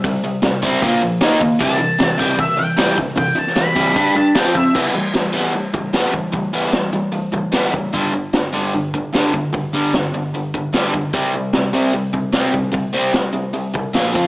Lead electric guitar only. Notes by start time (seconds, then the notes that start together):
1.62 A5
2.19 G5
2.40 E5
2.59 G5
3.18 G5
3.39 A5
3.59 B5
4.17 A5
4.38 G5
4.57 E5